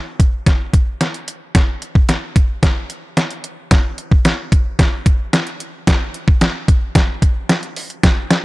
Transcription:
0.20 kick medium
0.20 closed hi-hat medium
0.46 kick medium
0.46 snare medium
0.46 closed hi-hat medium
0.73 kick medium
0.73 closed hi-hat medium
1.01 snare medium
1.01 closed hi-hat medium
1.14 closed hi-hat medium
1.28 closed hi-hat medium
1.55 kick medium
1.55 snare medium
1.55 closed hi-hat medium
1.82 closed hi-hat medium
1.95 kick loud
2.09 snare medium
2.09 closed hi-hat medium
2.36 kick medium
2.36 closed hi-hat medium
2.63 kick medium
2.63 snare medium
2.63 closed hi-hat medium
2.90 closed hi-hat medium
3.17 snare medium
3.17 closed hi-hat medium
3.30 closed hi-hat medium
3.44 closed hi-hat medium
3.71 kick loud
3.71 snare medium
3.71 closed hi-hat medium
3.98 closed hi-hat medium
4.11 kick loud
4.25 snare medium
4.25 closed hi-hat medium
4.52 kick medium
4.52 closed hi-hat medium
4.79 kick medium
4.79 snare medium
4.79 closed hi-hat medium
5.06 kick medium
5.06 closed hi-hat medium
5.33 snare medium
5.33 closed hi-hat medium
5.47 closed hi-hat medium
5.60 closed hi-hat medium
5.87 kick loud
5.87 snare medium
5.87 closed hi-hat loud
6.14 closed hi-hat medium
6.28 kick loud
6.41 snare medium
6.41 closed hi-hat medium
6.68 kick loud
6.68 closed hi-hat medium
6.95 kick loud
6.95 snare medium
6.95 closed hi-hat medium
7.22 kick medium
7.22 closed hi-hat medium
7.49 snare medium
7.49 closed hi-hat medium
7.63 closed hi-hat medium
7.76 open hi-hat medium
7.90 closed hi-hat medium
8.03 kick loud
8.03 snare medium
8.03 closed hi-hat medium
8.30 snare medium
8.30 closed hi-hat medium

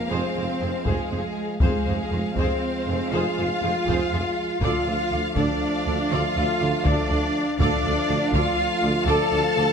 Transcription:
0.00 1.58 F3 soft
0.00 1.57 G#3 soft
0.00 0.11 A#3 medium
0.00 0.11 A#4 medium
0.00 1.57 F5 soft
0.00 impact medium
0.10 0.21 F1 soft
0.10 0.19 F2 medium
0.10 0.84 C4 soft
0.10 0.86 C4 medium
0.10 0.34 G#4 medium
0.10 0.35 C5 medium
0.10 0.87 C5 medium
0.36 0.46 F1 soft
0.36 0.44 F2 soft
0.36 0.44 G#4 soft
0.36 0.44 C5 soft
0.60 0.71 F1 soft
0.60 0.69 F2 soft
0.60 0.68 G#4 soft
0.60 0.68 C5 soft
0.85 0.96 F1 medium
0.85 0.93 F2 medium
0.85 1.60 G#3 medium
0.85 1.09 G#4 soft
0.85 1.61 G#4 medium
0.85 1.09 C5 soft
0.85 taiko medium
1.10 1.21 F1 soft
1.10 1.18 F2 soft
1.10 1.20 G#4 soft
1.10 1.19 C5 soft
1.60 1.72 F1 soft
1.60 1.70 F2 medium
1.60 4.57 F3 soft
1.60 4.58 G#3 soft
1.60 2.35 G#3 medium
1.60 1.84 G#4 soft
1.60 2.35 G#4 medium
1.60 1.84 C5 medium
1.60 4.59 F5 soft
1.60 taiko medium
1.86 1.97 F1 soft
1.86 1.95 F2 soft
1.86 1.95 G#4 soft
1.86 1.94 C5 soft
2.11 2.22 F1 soft
2.11 2.19 F2 soft
2.11 2.19 G#4 soft
2.11 2.19 C5 soft
2.34 2.43 F2 medium
2.34 3.11 C4 medium
2.34 2.60 G#4 soft
2.34 2.60 C5 medium
2.34 taiko medium
2.38 2.48 F1 soft
2.38 3.14 C5 medium
2.87 2.97 F1 soft
2.87 2.95 F2 soft
2.87 2.96 G#4 soft
2.87 2.96 C5 soft
3.12 3.23 F1 medium
3.12 3.20 F2 medium
3.12 4.48 F4 medium
3.12 4.61 F4 medium
3.12 3.36 G#4 medium
3.12 3.36 C5 medium
3.12 4.62 F5 medium
3.37 3.49 F1 soft
3.37 3.45 F2 soft
3.37 3.46 G#4 soft
3.37 3.46 C5 soft
3.62 3.73 F1 soft
3.62 3.70 F2 soft
3.62 3.71 G#4 soft
3.62 3.71 C5 soft
3.86 3.98 F1 medium
3.86 3.94 F2 medium
3.86 4.11 G#4 medium
3.86 4.11 C5 medium
3.86 taiko medium
4.11 4.23 F1 soft
4.11 4.19 F2 soft
4.11 4.20 G#4 soft
4.11 4.20 C5 soft
4.61 4.69 D2 medium
4.61 4.73 D2 medium
4.61 7.44 F3 soft
4.61 7.44 A3 soft
4.61 5.36 F4 medium
4.61 5.37 F4 medium
4.61 4.85 A4 medium
4.61 4.85 D5 medium
4.61 5.36 F5 medium
4.61 7.57 F5 medium
4.61 taiko medium
4.86 4.94 D2 soft
4.86 4.98 D2 soft
4.86 4.95 A4 soft
4.86 4.94 D5 soft
5.11 5.19 D2 soft
5.11 5.23 D2 soft
5.11 5.19 A4 soft
5.11 5.19 D5 soft
5.36 5.44 D2 medium
5.36 5.48 D2 medium
5.36 6.10 D4 medium
5.36 5.60 A4 medium
5.36 5.60 D5 medium
5.36 taiko medium
5.40 6.13 D5 medium
5.86 5.94 D2 soft
5.86 5.97 D2 soft
5.86 5.94 A4 medium
5.86 5.94 D5 soft
6.11 6.19 D2 medium
6.11 6.22 D2 medium
6.11 6.86 F4 medium
6.11 6.85 F4 medium
6.11 6.34 A4 medium
6.11 6.34 D5 medium
6.11 6.87 F5 medium
6.36 6.44 D2 soft
6.36 6.47 D2 soft
6.36 6.45 A4 soft
6.36 6.45 D5 medium
6.61 6.69 D2 soft
6.61 6.71 D2 soft
6.61 6.69 A4 soft
6.61 6.69 D5 medium
6.85 6.93 D2 medium
6.85 6.96 D2 medium
6.85 7.58 D4 medium
6.85 7.59 D4 medium
6.85 7.09 A4 medium
6.85 7.58 D5 medium
6.85 7.09 D5 medium
6.85 taiko medium
7.10 7.18 D2 medium
7.10 7.21 D2 soft
7.10 7.18 A4 medium
7.10 7.18 D5 medium
7.59 7.67 D2 medium
7.59 7.70 D2 medium
7.59 9.73 F3 medium
7.59 9.73 A3 medium
7.59 8.32 D4 medium
7.59 8.34 D4 medium
7.59 7.83 A4 medium
7.59 8.32 D5 medium
7.59 7.83 D5 medium
7.59 9.73 F5 medium
7.59 taiko medium
7.84 7.94 D2 medium
7.84 7.93 D2 soft
7.84 7.92 A4 soft
7.84 7.93 D5 soft
8.09 8.19 D2 medium
8.09 8.17 D2 soft
8.09 8.17 A4 medium
8.09 8.17 D5 medium
8.33 8.41 D2 medium
8.33 8.43 D2 medium
8.33 9.08 F4 medium
8.33 8.57 A4 medium
8.33 8.57 D5 medium
8.33 9.06 F5 medium
8.33 taiko medium
8.82 8.90 D2 medium
8.82 8.93 D2 medium
8.82 8.92 A4 medium
8.82 8.91 D5 medium
9.05 9.15 D2 medium
9.05 9.17 D2 medium
9.05 9.73 A4 loud
9.05 9.31 A4 medium
9.05 9.73 A4 medium
9.05 9.31 D5 medium
9.05 9.73 A5 loud
9.32 9.40 D2 medium
9.32 9.42 D2 medium
9.32 9.41 A4 medium
9.32 9.41 D5 medium
9.56 9.64 D2 medium
9.56 9.67 D2 medium
9.56 9.65 A4 medium
9.56 9.65 D5 medium

